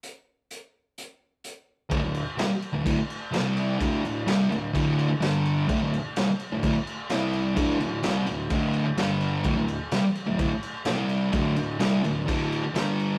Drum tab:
CC |--------|xxxxxxxx|xxxxxxxx|xxxxxxxx|
HH |x-x-x-x-|--------|--------|--------|
SD |--------|--o---o-|--o---o-|--o---o-|
BD |--------|o---o---|o---o---|o---o---|

CC |xxxxxxxx|xxxxxxxx|xxxxxxxx|
HH |--------|--------|--------|
SD |--o---o-|--o---o-|--o---o-|
BD |o---o---|o---o---|o---o---|